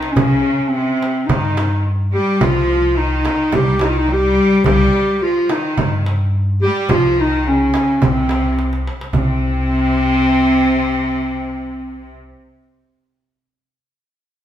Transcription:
Already playing: cello section D#3, clarinet D#4
0.03 darbuka ka
0.13 upright bass C2, clarinet C#4, darbuka dum
0.17 cello section C#3, frame drum
0.31 darbuka ka
0.46 darbuka ka
0.60 darbuka ka
0.68 clarinet C4
0.73 cello section C3, darbuka ka
1.03 darbuka tek
1.26 upright bass G2, cello section D#3, clarinet D#4, darbuka dum, frame drum
1.57 darbuka tek, frame drum
2.13 cello section G3, clarinet G4, darbuka ka
2.27 darbuka ka
2.41 upright bass C2, cello section F3, clarinet F4, frame drum, darbuka dum
2.55 darbuka ka
2.68 darbuka ka
2.82 darbuka ka
2.97 cello section D#3, clarinet D#4, darbuka ka
3.25 darbuka tek, frame drum
3.52 upright bass C2, cello section G3, clarinet G4, frame drum, darbuka dum
3.79 cello section D#3, clarinet D#4, darbuka tek, frame drum
3.90 clarinet F4
3.98 clarinet D#4
4.09 cello section G3
4.13 clarinet G4
4.36 darbuka ka
4.50 darbuka ka
4.64 upright bass C2, cello section G3, clarinet G4, darbuka dum, frame drum
4.78 darbuka ka
4.94 darbuka ka
5.08 darbuka ka
5.21 cello section F3, clarinet F4, darbuka ka
5.49 cello section D#3, clarinet D#4, darbuka tek, frame drum
5.77 upright bass G2, darbuka dum, frame drum
6.06 darbuka tek
6.62 cello section G3, clarinet G4, darbuka ka
6.89 upright bass C2, cello section F3, clarinet F4, darbuka dum, frame drum
7.04 darbuka ka
7.17 cello section D#3, clarinet D#4, darbuka ka
7.46 cello section C#3, clarinet C#4, darbuka ka
7.74 darbuka tek, frame drum
8.02 upright bass C2, cello section C3, clarinet C4, frame drum, darbuka dum
8.29 darbuka tek, frame drum
8.45 darbuka ka
8.59 darbuka tek
8.73 darbuka ka
8.88 darbuka tek
9.01 darbuka ka
9.13 upright bass C2, cello section C3, clarinet C4, frame drum, darbuka dum

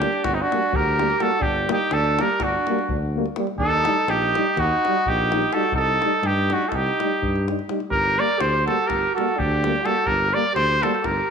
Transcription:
Already playing: alto saxophone D4, trumpet G4
0.01 euphonium G3 A#3, davul high
0.12 davul high
0.24 tuba G1, alto saxophone D4, trumpet F#4, davul high, davul low
0.33 alto saxophone C4, trumpet D#4
0.42 alto saxophone D4, trumpet F#4
0.52 euphonium G3 A#3, davul high
0.63 davul high
0.73 tuba D2, alto saxophone G4, trumpet A#4, davul low
0.99 euphonium G3 A#3, davul high
1.10 davul high
1.20 euphonium G3 A#3, alto saxophone F#4, trumpet A4, davul high
1.31 davul high
1.40 tuba G1, alto saxophone D4, trumpet G4, davul low
1.67 euphonium G3 A#3, alto saxophone D#4, davul high
1.72 trumpet G4
1.91 tuba D2, alto saxophone D4, trumpet A4, davul high
2.04 davul high
2.19 euphonium G3 A#3, alto saxophone G4, trumpet A#4, davul high
2.30 davul high
2.40 tuba G1, alto saxophone D4, trumpet F#4, davul high, davul low
2.67 euphonium G3 A#3, davul high
2.79 davul high
2.89 tuba D2, davul low
3.16 euphonium G3 A#3
3.26 davul high
3.36 euphonium G3 A#3, davul high
3.47 davul high
3.57 tuba D#2, alto saxophone D#4, trumpet A4, davul low
3.85 euphonium G3 D#4, davul high
4.07 tuba A#1, alto saxophone D#4, trumpet G4, davul high
4.22 davul high
4.35 euphonium G3 D#4, davul high
4.47 davul high
4.56 tuba D#2, alto saxophone D#4, trumpet F#4, davul high, davul low
4.85 euphonium G3 D#4, davul high
4.95 davul high
5.06 tuba A#1, alto saxophone D#4, trumpet G4, davul low
5.32 euphonium G3 D#4, davul high
5.42 davul high
5.52 euphonium G3 D#4, alto saxophone F#4, trumpet A4, davul high
5.63 davul high
5.72 tuba C2, alto saxophone D#4, trumpet A4, davul low
5.88 davul high
6.02 euphonium G3 D#4, davul high
6.14 davul high
6.22 tuba G2, alto saxophone D#4, trumpet G4, davul high
6.38 davul high
6.50 euphonium G3 D#4, alto saxophone D4, trumpet F#4, davul high
6.62 davul high
6.67 alto saxophone F#4, trumpet A4
6.72 tuba C2, alto saxophone D#4, trumpet G4, davul high, davul low
6.87 davul high
7.00 euphonium G3 D#4, davul high
7.11 davul high
7.22 tuba G2, davul low
7.36 davul high
7.48 euphonium G3 D#4, davul high
7.59 davul high
7.69 euphonium G3 D#4, davul high
7.80 davul high
7.89 tuba G1, alto saxophone G4, trumpet A#4, davul low
8.18 euphonium G3 A#3, alto saxophone A#4, trumpet D5
8.38 tuba D2, alto saxophone G4, trumpet C5, davul high
8.54 davul high
8.65 euphonium G3 A#3, alto saxophone F#4, trumpet A4, davul high
8.78 davul high
8.86 tuba G1, alto saxophone G4, trumpet A#4
8.90 davul high, davul low
9.14 euphonium G3, alto saxophone F#4, trumpet A4, davul high
9.19 euphonium A#3
9.29 davul high
9.37 tuba D2, alto saxophone D4, trumpet G4, davul low
9.64 euphonium G3 A#3, davul high
9.75 davul high
9.82 euphonium G3, alto saxophone F#4, trumpet A4, davul high
9.87 euphonium A#3
9.96 davul high
10.05 tuba G1, alto saxophone G4, trumpet A#4, davul low
10.29 alto saxophone A#4
10.34 euphonium G3 A#3, trumpet D5
10.53 tuba D2, alto saxophone G4, trumpet C5, davul high
10.70 davul high
10.80 euphonium G3 A#3, alto saxophone F#4, trumpet A4, davul high
10.94 davul high
11.02 tuba G1, alto saxophone G4, trumpet A#4, davul high, davul low

